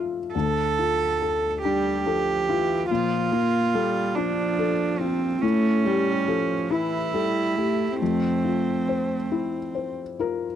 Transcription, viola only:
0, 0, Header, 1, 2, 480
1, 0, Start_track
1, 0, Key_signature, -1, "minor"
1, 0, Tempo, 851064
1, 191, Time_signature, 6, 3, 24, 8
1, 4029, Tempo, 870827
1, 5910, End_track
2, 0, Start_track
2, 0, Title_t, "Viola"
2, 0, Program_c, 0, 41
2, 925, Note_on_c, 0, 55, 47
2, 1161, Note_on_c, 0, 53, 39
2, 1170, Note_off_c, 0, 55, 0
2, 1401, Note_on_c, 0, 52, 48
2, 1410, Note_off_c, 0, 53, 0
2, 1632, Note_off_c, 0, 52, 0
2, 1636, Note_on_c, 0, 53, 58
2, 1873, Note_on_c, 0, 58, 56
2, 1881, Note_off_c, 0, 53, 0
2, 2113, Note_on_c, 0, 55, 55
2, 2122, Note_off_c, 0, 58, 0
2, 2348, Note_on_c, 0, 53, 49
2, 2356, Note_off_c, 0, 55, 0
2, 3054, Note_off_c, 0, 53, 0
2, 3057, Note_on_c, 0, 57, 68
2, 3303, Note_on_c, 0, 55, 56
2, 3312, Note_off_c, 0, 57, 0
2, 3544, Note_on_c, 0, 53, 50
2, 3553, Note_off_c, 0, 55, 0
2, 3782, Note_on_c, 0, 52, 51
2, 3790, Note_off_c, 0, 53, 0
2, 4029, Note_on_c, 0, 55, 45
2, 4037, Note_off_c, 0, 52, 0
2, 4262, Note_on_c, 0, 57, 48
2, 4270, Note_off_c, 0, 55, 0
2, 4495, Note_off_c, 0, 57, 0
2, 4499, Note_on_c, 0, 60, 54
2, 5562, Note_off_c, 0, 60, 0
2, 5910, End_track
0, 0, End_of_file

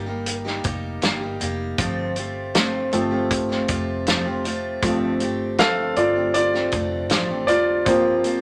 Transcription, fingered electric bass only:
0, 0, Header, 1, 2, 480
1, 0, Start_track
1, 0, Tempo, 759494
1, 1130, Time_signature, 4, 2, 24, 8
1, 5315, End_track
2, 0, Start_track
2, 0, Title_t, "Fingered electric bass"
2, 0, Program_c, 0, 33
2, 0, Note_on_c, 0, 31, 84
2, 385, Note_off_c, 0, 31, 0
2, 409, Note_on_c, 0, 29, 87
2, 633, Note_off_c, 0, 29, 0
2, 656, Note_on_c, 0, 31, 92
2, 876, Note_off_c, 0, 31, 0
2, 895, Note_on_c, 0, 29, 86
2, 1116, Note_off_c, 0, 29, 0
2, 1128, Note_on_c, 0, 31, 96
2, 1824, Note_off_c, 0, 31, 0
2, 1857, Note_on_c, 0, 31, 84
2, 2308, Note_off_c, 0, 31, 0
2, 2331, Note_on_c, 0, 29, 71
2, 3025, Note_off_c, 0, 29, 0
2, 3052, Note_on_c, 0, 31, 97
2, 3745, Note_off_c, 0, 31, 0
2, 3771, Note_on_c, 0, 31, 90
2, 4225, Note_off_c, 0, 31, 0
2, 4252, Note_on_c, 0, 29, 79
2, 4489, Note_off_c, 0, 29, 0
2, 4489, Note_on_c, 0, 33, 88
2, 4729, Note_off_c, 0, 33, 0
2, 4729, Note_on_c, 0, 29, 73
2, 4970, Note_off_c, 0, 29, 0
2, 4970, Note_on_c, 0, 31, 97
2, 5315, Note_off_c, 0, 31, 0
2, 5315, End_track
0, 0, End_of_file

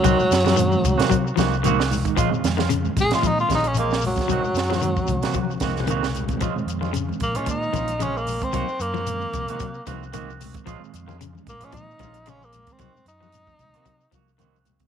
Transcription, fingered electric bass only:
0, 0, Header, 1, 3, 480
1, 0, Start_track
1, 0, Tempo, 531444
1, 40, Time_signature, 4, 2, 24, 8
1, 13434, End_track
2, 0, Start_track
2, 0, Title_t, "Fingered electric bass"
2, 0, Program_c, 0, 33
2, 44, Note_on_c, 0, 36, 85
2, 149, Note_off_c, 0, 36, 0
2, 281, Note_on_c, 0, 42, 90
2, 676, Note_off_c, 0, 42, 0
2, 766, Note_on_c, 0, 36, 79
2, 889, Note_on_c, 0, 48, 75
2, 903, Note_off_c, 0, 36, 0
2, 1177, Note_off_c, 0, 48, 0
2, 1242, Note_on_c, 0, 36, 82
2, 1834, Note_off_c, 0, 36, 0
2, 1961, Note_on_c, 0, 34, 86
2, 2066, Note_off_c, 0, 34, 0
2, 2206, Note_on_c, 0, 41, 89
2, 2597, Note_off_c, 0, 41, 0
2, 2675, Note_on_c, 0, 34, 84
2, 2814, Note_on_c, 0, 46, 78
2, 2828, Note_off_c, 0, 34, 0
2, 3098, Note_off_c, 0, 46, 0
2, 3157, Note_on_c, 0, 34, 80
2, 3749, Note_off_c, 0, 34, 0
2, 3876, Note_on_c, 0, 36, 91
2, 3981, Note_off_c, 0, 36, 0
2, 4099, Note_on_c, 0, 42, 91
2, 4500, Note_off_c, 0, 42, 0
2, 4595, Note_on_c, 0, 36, 78
2, 4715, Note_on_c, 0, 48, 78
2, 4728, Note_off_c, 0, 36, 0
2, 5006, Note_off_c, 0, 48, 0
2, 5061, Note_on_c, 0, 36, 79
2, 5659, Note_off_c, 0, 36, 0
2, 5789, Note_on_c, 0, 34, 88
2, 5896, Note_off_c, 0, 34, 0
2, 6015, Note_on_c, 0, 41, 83
2, 6417, Note_off_c, 0, 41, 0
2, 6507, Note_on_c, 0, 34, 76
2, 6638, Note_on_c, 0, 46, 77
2, 6651, Note_off_c, 0, 34, 0
2, 6927, Note_off_c, 0, 46, 0
2, 6982, Note_on_c, 0, 34, 82
2, 7580, Note_off_c, 0, 34, 0
2, 7714, Note_on_c, 0, 36, 88
2, 7820, Note_off_c, 0, 36, 0
2, 7944, Note_on_c, 0, 42, 85
2, 8343, Note_off_c, 0, 42, 0
2, 8435, Note_on_c, 0, 36, 81
2, 8544, Note_on_c, 0, 48, 76
2, 8557, Note_off_c, 0, 36, 0
2, 8839, Note_off_c, 0, 48, 0
2, 8913, Note_on_c, 0, 36, 81
2, 9507, Note_off_c, 0, 36, 0
2, 9632, Note_on_c, 0, 34, 85
2, 9739, Note_off_c, 0, 34, 0
2, 9876, Note_on_c, 0, 41, 86
2, 10271, Note_off_c, 0, 41, 0
2, 10355, Note_on_c, 0, 34, 73
2, 10487, Note_on_c, 0, 46, 71
2, 10501, Note_off_c, 0, 34, 0
2, 10774, Note_off_c, 0, 46, 0
2, 10835, Note_on_c, 0, 34, 80
2, 11430, Note_off_c, 0, 34, 0
2, 11556, Note_on_c, 0, 36, 78
2, 11663, Note_off_c, 0, 36, 0
2, 11790, Note_on_c, 0, 42, 86
2, 12189, Note_off_c, 0, 42, 0
2, 12274, Note_on_c, 0, 36, 69
2, 12400, Note_on_c, 0, 48, 77
2, 12414, Note_off_c, 0, 36, 0
2, 12692, Note_off_c, 0, 48, 0
2, 12761, Note_on_c, 0, 36, 77
2, 13355, Note_off_c, 0, 36, 0
2, 13434, End_track
3, 0, Start_track
3, 0, Title_t, "Muted fingered electric bass strokes"
3, 172, Note_on_c, 9, 29, 35
3, 262, Note_off_c, 9, 29, 0
3, 2105, Note_on_c, 9, 29, 36
3, 2195, Note_off_c, 9, 29, 0
3, 4003, Note_on_c, 9, 29, 35
3, 4093, Note_off_c, 9, 29, 0
3, 13434, End_track
0, 0, End_of_file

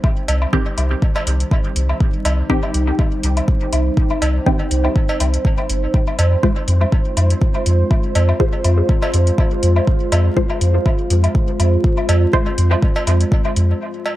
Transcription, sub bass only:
0, 0, Header, 1, 2, 480
1, 0, Start_track
1, 0, Tempo, 491803
1, 37, Time_signature, 4, 2, 24, 8
1, 13824, End_track
2, 0, Start_track
2, 0, Title_t, "Sub bass"
2, 0, Program_c, 0, 38
2, 277, Note_on_c, 0, 36, 97
2, 448, Note_off_c, 0, 36, 0
2, 757, Note_on_c, 0, 36, 100
2, 927, Note_off_c, 0, 36, 0
2, 1237, Note_on_c, 0, 36, 101
2, 1407, Note_off_c, 0, 36, 0
2, 1716, Note_on_c, 0, 36, 88
2, 1887, Note_off_c, 0, 36, 0
2, 2198, Note_on_c, 0, 36, 101
2, 2368, Note_off_c, 0, 36, 0
2, 2676, Note_on_c, 0, 36, 105
2, 2847, Note_off_c, 0, 36, 0
2, 3156, Note_on_c, 0, 36, 95
2, 3327, Note_off_c, 0, 36, 0
2, 3637, Note_on_c, 0, 36, 88
2, 3808, Note_off_c, 0, 36, 0
2, 4117, Note_on_c, 0, 36, 98
2, 4288, Note_off_c, 0, 36, 0
2, 4597, Note_on_c, 0, 36, 105
2, 4768, Note_off_c, 0, 36, 0
2, 5077, Note_on_c, 0, 36, 97
2, 5248, Note_off_c, 0, 36, 0
2, 5558, Note_on_c, 0, 31, 98
2, 5728, Note_off_c, 0, 31, 0
2, 6037, Note_on_c, 0, 41, 102
2, 6208, Note_off_c, 0, 41, 0
2, 6517, Note_on_c, 0, 41, 100
2, 6687, Note_off_c, 0, 41, 0
2, 6997, Note_on_c, 0, 41, 99
2, 7168, Note_off_c, 0, 41, 0
2, 7478, Note_on_c, 0, 41, 90
2, 7648, Note_off_c, 0, 41, 0
2, 7957, Note_on_c, 0, 41, 96
2, 8128, Note_off_c, 0, 41, 0
2, 8437, Note_on_c, 0, 41, 104
2, 8608, Note_off_c, 0, 41, 0
2, 8918, Note_on_c, 0, 41, 98
2, 9088, Note_off_c, 0, 41, 0
2, 9398, Note_on_c, 0, 41, 90
2, 9568, Note_off_c, 0, 41, 0
2, 9877, Note_on_c, 0, 41, 95
2, 10048, Note_off_c, 0, 41, 0
2, 10357, Note_on_c, 0, 41, 102
2, 10528, Note_off_c, 0, 41, 0
2, 10837, Note_on_c, 0, 41, 102
2, 11008, Note_off_c, 0, 41, 0
2, 11317, Note_on_c, 0, 41, 87
2, 11488, Note_off_c, 0, 41, 0
2, 11797, Note_on_c, 0, 41, 100
2, 11968, Note_off_c, 0, 41, 0
2, 12278, Note_on_c, 0, 41, 107
2, 12448, Note_off_c, 0, 41, 0
2, 12757, Note_on_c, 0, 41, 89
2, 12928, Note_off_c, 0, 41, 0
2, 13238, Note_on_c, 0, 41, 95
2, 13408, Note_off_c, 0, 41, 0
2, 13824, End_track
0, 0, End_of_file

